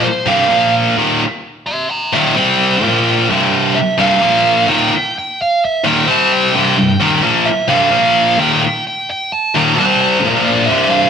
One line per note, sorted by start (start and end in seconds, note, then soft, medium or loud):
0.03 0.26 C5 loud
0.26 0.49 C2 medium
0.26 0.49 G2 medium
0.26 0.49 C3 loud
0.26 0.73 F5 loud
0.49 0.96 A#2 medium
0.49 0.96 F3 loud
0.49 0.96 A#3 loud
0.97 1.20 D#2 medium
0.97 1.20 A#2 loud
0.97 1.20 D#3 loud
1.66 1.90 E5 medium
1.66 1.89 C6 loud
1.90 2.12 G5 medium
1.90 2.13 A#5 loud
2.13 2.35 D#2 medium
2.13 2.35 A#2 loud
2.13 2.36 D#3 loud
2.13 2.35 E5 medium
2.13 2.36 G5 loud
2.36 2.82 C3 medium
2.36 2.82 G3 loud
2.36 2.82 C4 loud
2.36 3.27 G5 loud
2.82 3.28 A#2 medium
2.82 3.28 F3 medium
2.82 3.28 A#3 loud
3.29 3.75 C2 loud
3.29 3.75 G2 loud
3.29 3.75 C3 loud
3.75 3.97 E5 medium
3.98 4.21 C2 medium
3.98 4.21 G2 medium
3.98 4.21 C3 loud
3.98 4.69 F5 medium
4.21 4.66 A#2 medium
4.21 4.67 F3 medium
4.21 4.68 A#3 loud
4.67 4.90 D#2 medium
4.67 4.90 A#2 loud
4.67 4.91 D#3 loud
4.67 5.17 G5 medium
5.18 5.40 G5 loud
5.41 5.63 F5 medium
5.65 5.87 E5 loud
5.84 6.07 D#2 medium
5.84 6.06 A#2 medium
5.84 6.07 D#3 loud
5.84 6.09 G5 loud
6.07 6.53 C3 medium
6.07 6.53 G3 medium
6.07 6.53 C4 loud
6.07 6.32 A5 medium
6.33 7.20 G5 medium
6.54 6.76 C2 medium
6.54 6.76 G2 loud
6.54 6.77 C3 loud
6.77 6.95 C2 medium
6.77 6.95 G2 medium
7.00 7.22 D#2 loud
7.00 7.21 A#2 loud
7.00 7.23 D#3 loud
7.22 7.45 A#2 medium
7.22 7.45 F3 loud
7.22 7.45 A#3 medium
7.46 7.68 E5 medium
7.68 7.90 C2 medium
7.68 7.91 G2 loud
7.68 7.91 C3 loud
7.68 8.40 F5 medium
7.90 8.37 A#2 loud
7.90 8.37 F3 loud
7.90 8.37 A#3 loud
8.38 8.60 D#2 loud
8.38 8.61 A#2 loud
8.38 8.61 D#3 loud
8.38 8.61 G5 medium
8.62 8.83 G5 medium
8.87 9.09 G5 medium
9.11 9.33 G5 medium
9.32 9.55 A5 loud
9.54 9.77 D#2 medium
9.54 9.78 A#2 medium
9.54 9.78 D#3 loud
9.54 9.77 A#5 loud
9.78 10.24 C3 medium
9.78 10.24 G3 medium
9.78 10.23 C4 loud
9.78 10.01 A5 medium
10.01 10.61 A#5 loud
10.24 10.69 A#2 loud
10.24 10.69 F3 loud
10.24 10.69 A#3 loud
10.45 10.67 D5 medium
10.61 10.89 A5 loud
10.66 11.10 C2 loud
10.66 10.89 E5 medium
10.70 11.10 G2 loud
10.70 11.10 C3 loud
10.90 11.10 F5 medium